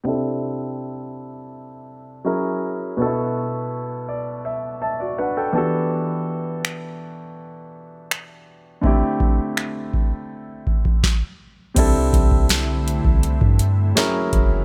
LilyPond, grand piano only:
\new Staff \with { instrumentName = "Grand piano" } { \time 4/4 \key c \lydian \tempo 4 = 82 << { r1 | r4. d''8 e''8 <e'' a''>16 <fis' d''>16 <d' b' fis''>16 <a' g''>16 a''8 | r1 | r1 |
r1 | } \\ { <c c' d' e' a'>2. <fis cis' e' gis' ais'>4 | <b, b d' e' fis' a'>2.~ <b, b d' e' fis' a'>8 <e b d' fis' g' a'>8~ | <e b d' fis' g' a'>2.~ <e b d' fis' g' a'>8 r8 | <d a c' e' g'>2. r4 |
<c c' d' e' a'>2. <fis cis' e' gis' ais'>4 | } >> }